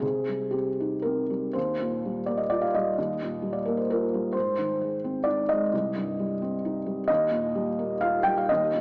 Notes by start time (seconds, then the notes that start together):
0.00 C3 G#4
0.28 G3
0.51 C4 G4
0.80 D#4
1.02 C4 A#4
1.30 G3
1.53 D#2 C5
1.80 A#2
2.05 G3
2.26 A#3 D5
2.37 D#5
2.50 F4 D5
2.61 F5
2.74 G3 D#5
2.98 D#2
3.22 A#2
3.42 G3
3.53 D5
3.65 A#3 A#4
3.77 C5
3.90 F4 A#4
4.14 G3
4.32 G#2 C5
4.58 D#3
4.81 G#3
5.04 C4
5.23 D#4 D5
5.49 G#3 D#5
5.73 C2
5.96 G2
6.19 G3
6.42 C4
6.65 D#4
6.86 G3
7.08 D#2 D#5
7.32 A#2
7.55 G3
7.79 A#3
8.01 F4 F5
8.23 G3 G5
8.38 F5
8.49 D#2 D#5
8.74 A#2